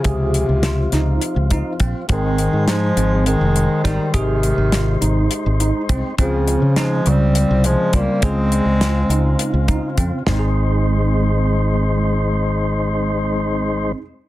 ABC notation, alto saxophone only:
X:1
M:7/8
L:1/8
Q:1/4=103
K:Ab
V:1 name="Alto saxophone" clef=bass
z6 z | A,2 A,2 A,2 G, | E,4 z3 | F,2 A, C2 A, B, |
C4- C z2 | z6 z | z6 z |]